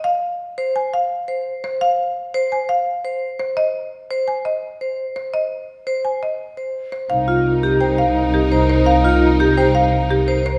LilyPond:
<<
  \new Staff \with { instrumentName = "Marimba" } { \time 5/4 \key aes \lydian \tempo 4 = 170 f''8 r4. aes''8 f''8 r4. c''8 | f''8 r4. aes''8 f''8 r4. c''8 | ees''8 r4. aes''8 ees''8 r4. c''8 | ees''8 r4. aes''8 ees''8 r4. c''8 |
\key c \minor f''8 r4. g''8 f''8 r8 g'8 r8 c''8 | f''8 r4. g''8 f''8 r8 g'8 r8 c''8 | }
  \new Staff \with { instrumentName = "Vibraphone" } { \time 5/4 \key aes \lydian r4. c''8 r4. c''8 r4 | r4. c''8 r4. c''8 r4 | r4. c''8 r4. c''8 r4 | r4. c''8 r4. c''8 r4 |
\key c \minor r8 f'8 r8 g'8 c''8 r4. c''8 r8 | r8 f'8 r8 g'8 c''8 r4. c''8 r8 | }
  \new Staff \with { instrumentName = "String section" } { \time 5/4 \key aes \lydian r1 r4 | r1 r4 | r1 r4 | r1 r4 |
\key c \minor <ees' bes'>1~ <ees' bes'>4~ | <ees' bes'>1~ <ees' bes'>8 r8 | }
  \new Staff \with { instrumentName = "Alto flute" } { \time 5/4 \key aes \lydian r1 r4 | r1 r4 | r1 r4 | r1 r4 |
\key c \minor ees'1~ ees'4~ | ees'1~ ees'8 r8 | }
  \new Staff \with { instrumentName = "Double bass section" } { \clef bass \time 5/4 \key aes \lydian r1 r4 | r1 r4 | r1 r4 | r1 r4 |
\key c \minor c,1~ c,4~ | c,1~ c,4 | }
>>